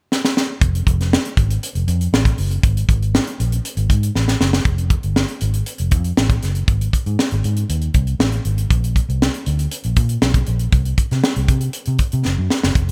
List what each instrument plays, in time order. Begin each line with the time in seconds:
0.12 snare
0.25 snare
0.37 snare
0.61 fingered electric bass F1, kick, closed hi-hat
0.75 closed hi-hat
0.87 fingered electric bass F1, kick, closed hi-hat
1.00 snare, closed hi-hat
1.13 snare
1.25 closed hi-hat
1.37 fingered electric bass G#1, kick, closed hi-hat
1.50 closed hi-hat
1.63 closed hi-hat
1.75 fingered electric bass F1, closed hi-hat
1.88 fingered electric bass F2, closed hi-hat
2.01 closed hi-hat
2.13 fingered electric bass A1, snare
2.25 kick, closed hi-hat
2.38 fingered electric bass F#1, open hi-hat
2.51 closed hi-hat
2.63 fingered electric bass G#1, kick, closed hi-hat
2.77 closed hi-hat
2.89 fingered electric bass G#1, kick, closed hi-hat
3.02 closed hi-hat
3.15 snare
3.27 closed hi-hat
3.40 fingered electric bass A#1, closed hi-hat
3.52 closed hi-hat
3.65 closed hi-hat
3.77 fingered electric bass G#1, closed hi-hat
3.90 fingered electric bass G#2, kick, closed hi-hat
4.03 closed hi-hat
4.15 fingered electric bass A1, snare
4.28 snare
4.40 fingered electric bass F#1, snare
4.53 snare
4.65 fingered electric bass F1, kick, closed hi-hat
4.78 closed hi-hat
4.90 kick, closed hi-hat
5.03 fingered electric bass G1, closed hi-hat
5.16 snare
5.28 closed hi-hat
5.41 fingered electric bass G#1, closed hi-hat
5.53 closed hi-hat
5.66 closed hi-hat
5.78 fingered electric bass F1, closed hi-hat
5.91 fingered electric bass F2, kick, closed hi-hat
6.04 closed hi-hat
6.17 fingered electric bass A1, snare
6.29 kick, closed hi-hat
6.42 fingered electric bass F#1, snare, closed hi-hat
6.55 closed hi-hat
6.68 fingered electric bass G#1, kick, closed hi-hat
6.81 closed hi-hat
6.93 kick, closed hi-hat
7.06 fingered electric bass G#2, closed hi-hat
7.19 snare
7.31 fingered electric bass G#1, closed hi-hat
7.44 fingered electric bass G#2, closed hi-hat
7.56 closed hi-hat
7.69 fingered electric bass D#2, closed hi-hat
7.81 closed hi-hat
7.94 fingered electric bass C2, kick, closed hi-hat
8.07 closed hi-hat
8.19 fingered electric bass A1, snare
8.32 closed hi-hat
8.45 fingered electric bass G#1, closed hi-hat
8.58 closed hi-hat
8.70 fingered electric bass A#1, kick, closed hi-hat
8.84 closed hi-hat
8.96 kick, closed hi-hat
9.09 fingered electric bass C2, closed hi-hat
9.22 snare
9.34 closed hi-hat
9.46 fingered electric bass D2, closed hi-hat
9.59 closed hi-hat
9.71 closed hi-hat
9.83 fingered electric bass A#1, closed hi-hat
9.96 fingered electric bass A#2, kick, closed hi-hat
10.09 closed hi-hat
10.22 fingered electric bass B1, snare
10.34 kick, closed hi-hat
10.46 fingered electric bass A#1, closed hi-hat
10.59 closed hi-hat
10.72 fingered electric bass C2, kick, closed hi-hat
10.85 closed hi-hat
10.98 kick, closed hi-hat
11.11 fingered electric bass C3, snare, closed hi-hat
11.24 snare
11.36 fingered electric bass C2, closed hi-hat
11.48 fingered electric bass C3, kick, closed hi-hat
11.60 closed hi-hat
11.73 closed hi-hat
11.85 fingered electric bass C3, closed hi-hat
11.98 kick, closed hi-hat
12.12 fingered electric bass C3, closed hi-hat
12.25 fingered electric bass F#1, snare
12.38 fingered electric bass F#2
12.50 snare
12.63 fingered electric bass F#1, snare
12.75 fingered electric bass F1, kick, closed hi-hat
12.89 closed hi-hat